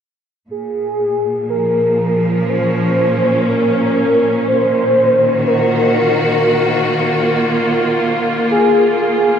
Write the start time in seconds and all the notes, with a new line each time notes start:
0.50 A#2 G#4
1.45 F3
1.50 A#4
2.30 C#4
2.48 C5
3.48 A#4
4.48 C5
4.63 D#3
5.33 F#4
5.42 A#3
5.46 F4 A#4
8.51 G#4
9.01 G#4